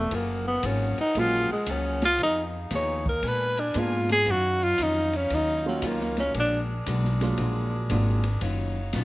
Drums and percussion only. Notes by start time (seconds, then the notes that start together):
0.11 kick, ride
0.63 kick, hi-hat pedal, ride
0.98 ride
1.15 kick, ride
1.66 kick, hi-hat pedal, ride
2.02 snare, ride
2.19 kick, ride
2.71 kick, snare, hi-hat pedal, ride
3.06 kick
3.23 kick, ride
3.57 ride
3.74 kick, hi-hat pedal, ride
4.09 snare, ride
4.26 kick, ride
4.78 kick, hi-hat pedal, ride
5.13 ride
5.30 kick, ride
5.82 kick, hi-hat pedal, ride
6.00 snare
6.17 snare, ride
6.34 kick, ride
6.86 kick, hi-hat pedal, ride
7.04 snare
7.21 snare, ride
7.38 kick, ride
7.90 kick, hi-hat pedal, ride
8.24 ride
8.41 kick, ride
8.93 kick, snare, hi-hat pedal, ride